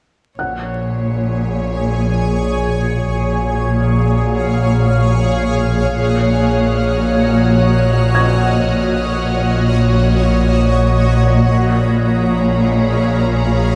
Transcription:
0.38 3.11 A#1 soft
0.38 3.12 A#1 soft
0.38 3.12 A#2 soft
0.38 3.12 G#4 soft
0.38 3.12 C#5 soft
0.38 2.01 F#5 soft
0.38 3.12 G#5 soft
0.38 2.01 F#6 soft
3.15 5.89 A#1 medium
3.15 5.89 A#1 soft
3.15 5.89 A#2 soft
3.15 5.89 G#4 soft
3.15 5.89 C#5 soft
3.15 5.90 C#5 soft
3.15 5.89 F5 soft
5.92 8.67 A#1 medium
5.92 8.67 A#1 soft
5.92 8.67 A#2 soft
5.92 8.69 F#4 medium
5.92 8.67 C#5 soft
5.92 8.68 C#5 soft
5.92 8.69 D#5 medium
5.92 11.16 D#6 soft
5.92 10.61 F6 soft
5.92 10.06 F#6 soft
8.15 9.78 G#6 soft
8.70 11.45 A#1 medium
8.70 11.45 A#1 soft
8.70 11.44 A#2 soft
8.70 11.44 F#4 soft
8.70 11.44 C#5 medium
8.70 11.44 C#5 soft
8.70 11.44 D#5 soft
11.48 13.75 A#1 medium
11.48 13.75 A#1 soft
11.48 13.75 A#2 soft
11.48 13.75 G#4 medium
11.48 13.75 C#5 medium
11.48 13.75 C#5 soft
11.48 13.75 F5 medium
11.48 13.75 A#5 soft
11.48 13.75 B5 soft

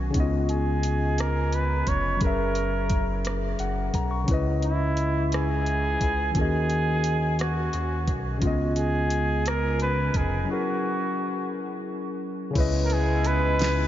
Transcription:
0.00 0.11 B1 medium
0.00 0.16 D#3 medium
0.00 0.13 C#4 soft
0.00 0.10 F#4 soft
0.00 0.12 A#4 soft
0.00 0.16 D#5 medium
0.10 2.15 C#3 medium
0.10 2.16 C#4 medium
0.10 closed hi-hat medium
0.14 1.83 C#2 loud
0.14 2.19 B3 medium
0.14 0.21 D#4 soft
0.14 kick medium
0.20 2.21 F4 medium
0.20 2.20 D#5 medium
0.49 1.22 G#4 medium
0.49 closed hi-hat soft
0.83 closed hi-hat medium
1.18 1.56 A#4 medium
1.18 cross-stick medium
1.18 closed hi-hat medium
1.53 1.90 B4 medium
1.53 closed hi-hat soft
1.87 2.18 F1 medium
1.87 2.22 C#5 medium
1.87 kick medium
1.87 closed hi-hat medium
2.17 4.22 F#3 medium
2.17 4.23 C#4 soft
2.17 closed hi-hat medium
2.21 3.55 F#1 medium
2.21 4.24 G#4 soft
2.21 3.22 A#4 medium
2.21 4.26 A#4 soft
2.21 kick medium
2.27 4.27 E5 medium
2.55 closed hi-hat soft
2.90 kick medium
2.90 closed hi-hat medium
3.25 cross-stick medium
3.25 closed hi-hat medium
3.59 3.91 F#1 medium
3.59 3.92 F#5 medium
3.59 closed hi-hat soft
3.94 4.25 B1 medium
3.94 4.11 A#5 medium
3.94 kick medium
3.94 closed hi-hat medium
4.11 4.44 C#6 medium
4.24 6.29 C#3 medium
4.24 6.30 C#4 medium
4.28 5.97 C#2 loud
4.28 6.31 E4 medium
4.28 6.33 B4 medium
4.28 kick medium
4.28 closed hi-hat medium
4.34 6.34 D#5 medium
4.62 5.29 E4 medium
4.62 closed hi-hat soft
4.97 closed hi-hat medium
5.32 6.32 G#4 medium
5.32 cross-stick medium
5.32 closed hi-hat medium
5.66 closed hi-hat soft
6.01 6.32 C#2 medium
6.01 kick medium
6.01 closed hi-hat medium
6.31 8.36 D#3 medium
6.31 8.37 C#4 soft
6.31 kick medium
6.31 closed hi-hat medium
6.36 7.69 D#2 loud
6.36 6.42 F4 soft
6.36 7.36 G#4 medium
6.36 8.40 A#4 soft
6.41 8.42 F#4 soft
6.41 8.41 D#5 medium
6.70 closed hi-hat soft
7.04 closed hi-hat medium
7.39 8.13 F#4 medium
7.39 cross-stick medium
7.39 closed hi-hat medium
7.73 8.10 D#2 medium
7.73 closed hi-hat soft
8.08 8.39 B1 medium
8.08 kick medium
8.08 closed hi-hat medium
8.38 10.43 C#3 medium
8.38 10.44 C#4 medium
8.38 closed hi-hat medium
8.42 10.11 C#2 loud
8.42 10.46 B3 medium
8.42 10.45 F4 medium
8.42 kick medium
8.47 10.47 D#5 medium
8.76 9.49 G#4 medium
8.76 closed hi-hat soft
9.10 closed hi-hat medium
9.46 9.81 A#4 medium
9.46 cross-stick medium
9.46 closed hi-hat medium
9.80 10.18 B4 medium
9.80 closed hi-hat soft
10.14 10.46 F1 medium
10.14 10.50 G#4 medium
10.14 kick medium
10.14 closed hi-hat medium
10.44 12.49 F#3 medium
10.44 12.51 C#4 soft
10.49 12.52 E4 soft
10.49 11.49 F#4 medium
10.49 12.53 G#4 soft
10.53 12.54 A#4 medium
12.51 13.88 C#3 medium
12.51 13.88 C#4 medium
12.55 13.88 C#2 loud
12.55 13.88 G#3 medium
12.55 13.88 B3 medium
12.55 13.88 E4 medium
12.55 13.88 B4 medium
12.55 kick loud
12.55 closed hi-hat medium
12.55 crash medium
12.60 13.88 D#5 medium
12.85 12.94 A#4 medium
12.90 13.28 G#4 medium
12.90 closed hi-hat medium
13.24 13.88 B4 loud
13.24 closed hi-hat medium
13.59 snare loud
13.59 closed hi-hat medium

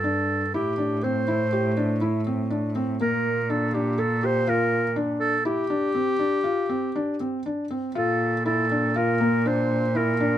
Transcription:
0.00 0.55 G2 medium
0.00 0.41 D4 medium
0.00 0.54 A4 medium
0.54 3.02 A2 medium
0.54 0.72 E4 medium
0.54 1.05 G4 medium
0.78 0.96 D4 medium
1.03 1.22 C4 medium
1.03 2.02 C5 medium
1.28 1.46 E4 medium
1.53 1.71 G4 medium
1.77 1.95 D4 medium
2.01 2.20 E4 medium
2.27 2.45 C4 medium
2.50 2.69 D4 medium
2.75 2.94 C4 medium
3.01 5.42 A#2 medium
3.01 3.37 A#3 medium
3.01 3.52 A#4 medium
3.50 3.68 D4 medium
3.50 3.76 A4 medium
3.74 3.92 D4 medium
3.74 4.01 G4 medium
3.98 4.16 A4 medium
3.98 4.27 A4 medium
4.23 4.41 G4 medium
4.23 4.50 C5 medium
4.47 4.83 F4 medium
4.47 4.97 A#4 medium
4.96 5.32 D4 medium
5.20 5.43 A4 medium
5.45 5.63 E4 medium
5.45 7.41 G4 medium
5.70 5.88 D4 medium
5.95 6.13 C4 medium
6.19 6.38 D4 medium
6.44 6.62 F4 medium
6.69 6.88 C4 medium
6.96 7.14 D4 medium
7.20 7.39 C4 medium
7.46 7.64 D4 medium
7.71 7.89 C4 medium
7.95 10.38 A#2 medium
7.95 8.32 F4 medium
7.95 8.43 A4 medium
8.46 8.64 E4 medium
8.46 8.99 A4 medium
8.71 8.89 D4 medium
8.96 9.14 F4 medium
8.96 9.49 A#4 medium
9.20 9.39 A#3 medium
9.45 9.82 D4 medium
9.45 9.98 C5 medium
9.95 10.13 E4 medium
9.95 10.38 A#4 medium
10.20 10.38 D4 medium

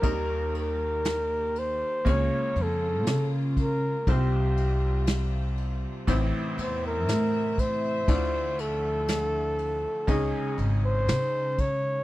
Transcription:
0.00 2.01 D#2 medium
0.00 1.82 D#2 medium
0.00 2.03 D#3 medium
0.00 2.02 D#3 medium
0.00 1.43 G3 medium
0.00 4.02 A#3 medium
0.00 1.44 A#3 medium
0.00 1.44 D#4 medium
0.00 2.02 G4 medium
0.00 0.57 A#4 medium
0.00 1.44 A#4 medium
0.00 kick medium
0.00 ride medium
0.55 1.60 A#4 medium
0.55 ride soft
1.05 snare medium
1.05 ride medium
1.56 2.13 C5 medium
1.56 ride soft
2.05 2.28 C#2 medium
2.05 4.03 C#2 medium
2.05 4.05 C#3 medium
2.05 4.03 C#3 medium
2.05 3.45 A#3 medium
2.05 3.46 C#4 medium
2.05 4.05 F4 medium
2.05 3.46 F4 medium
2.05 3.46 C#5 medium
2.05 kick medium
2.05 ride medium
2.11 2.64 C#5 medium
2.56 3.06 F2 medium
2.56 ride soft
2.62 3.33 A4 medium
3.06 3.95 C#3 medium
3.06 snare medium
3.06 ride medium
3.57 kick medium
3.57 ride soft
3.62 4.13 A#4 medium
4.06 5.84 C2 loud
4.06 6.05 C2 medium
4.06 8.04 C3 medium
4.06 6.04 C3 medium
4.06 6.05 G3 medium
4.06 5.47 G3 medium
4.06 5.47 C4 medium
4.06 6.05 F4 medium
4.06 5.47 F4 medium
4.06 5.47 C5 medium
4.06 kick medium
4.06 ride medium
4.12 5.10 G4 medium
4.57 ride soft
5.07 snare loud
5.07 ride medium
5.58 ride soft
6.07 6.30 A1 loud
6.07 8.04 A1 medium
6.07 8.05 A2 medium
6.07 7.47 E3 medium
6.07 8.06 C4 medium
6.07 7.47 C4 medium
6.07 7.48 E4 medium
6.07 7.48 C5 loud
6.07 10.04 E5 medium
6.07 kick medium
6.07 ride medium
6.58 7.08 E2 medium
6.58 6.83 C5 medium
6.58 ride medium
6.86 7.61 A#4 loud
7.08 7.96 A2 medium
7.08 snare medium
7.08 ride medium
7.58 8.62 C5 loud
7.58 kick medium
7.58 ride medium
8.07 9.85 D2 loud
8.07 10.05 D2 medium
8.07 10.06 D3 medium
8.07 10.05 D3 medium
8.07 10.06 F3 medium
8.07 9.47 A3 medium
8.07 9.48 E4 medium
8.07 9.48 F4 medium
8.07 9.48 D5 medium
8.07 kick medium
8.07 ride medium
8.59 10.12 A4 medium
8.59 ride soft
9.08 snare medium
9.08 ride medium
9.58 ride soft
10.07 10.30 C#2 medium
10.07 12.04 C#2 medium
10.07 12.04 C#3 medium
10.07 12.04 G#3 medium
10.07 11.47 C#4 medium
10.07 12.04 D#4 medium
10.07 11.48 D#4 medium
10.07 11.48 G#4 medium
10.07 10.58 G#4 medium
10.07 11.48 D#5 medium
10.07 kick medium
10.07 ride medium
10.58 11.09 G#1 medium
10.58 ride soft
10.85 11.62 C5 loud
11.08 11.97 C#3 medium
11.08 snare medium
11.08 ride medium
11.58 12.04 C#5 loud
11.58 kick medium
11.58 ride soft

